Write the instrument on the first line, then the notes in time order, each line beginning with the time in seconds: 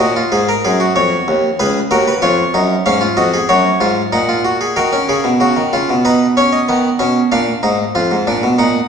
harpsichord
0.00 A#2 F#4 D#5
0.16 F4
0.32 G#2 G#4
0.49 A#4
0.65 F#2 G#4
0.80 F#4
0.96 F2 C#5
1.28 D#2
1.59 C#2 G#4 B4
1.91 D#2 F#4 A#4
2.08 B4
2.22 F2 F4 C#5
2.54 F#2 D#4
2.86 G#2 C#4 F5
3.01 F4
3.17 F2 F#4 D#5
3.34 G#4
3.49 F#2 F#4 C#5
3.81 G#2 F4
4.13 A#2 D#4 F#5
4.29 F4
4.45 F#4
4.61 G#4
4.76 D#3 F#4 A#4
4.93 C#4
5.09 C#3 G#4
5.24 B2
5.40 C#3 F#4
5.57 D#3
5.73 C#3 F4
5.90 B2
6.05 D#4 B4
6.37 C#4 C#5
6.53 D#5
6.68 D#3 B3
6.99 B2 C#4
7.32 A#2 D4 F5
7.63 G#2 D#4
7.95 F2 F4
8.11 G#2
8.27 A#2 D4
8.43 B2
8.59 A#2 D#4 F#5